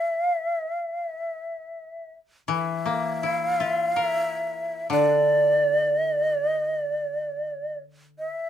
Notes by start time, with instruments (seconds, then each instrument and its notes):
Already playing: shakuhachi E5
0.15 shakuhachi F5
0.39 shakuhachi E5
0.78 shakuhachi F5
1.01 shakuhachi E5
2.48 koto E3
2.52 shakuhachi E5
2.86 koto A#3
3.23 koto E4
3.38 shakuhachi F5
3.56 shakuhachi E5
3.60 koto F4
3.85 shakuhachi F5
3.96 koto A#4
4.03 shakuhachi E5
4.90 koto D3, shakuhachi D5
5.93 shakuhachi D#5
6.21 shakuhachi D5
6.51 shakuhachi D#5
6.78 shakuhachi D5
8.19 shakuhachi E5